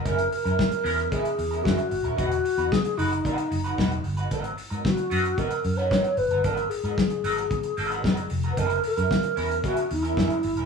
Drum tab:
HH |xxox-xoxxxox-xox|xxox-xoxxxox-xox|xxox-xoxxxox-xox|xxox-xoxxxox-xox|
SD |----o-------o---|----o-------o---|----o-------o---|----o-------o---|
BD |o---o---o---o---|o---o---o---o---|o---o---o---o---|o---o---o---o---|

HH |xxox-xoxxxox-xox|
SD |----o-------o---|
BD |o---o---o---o---|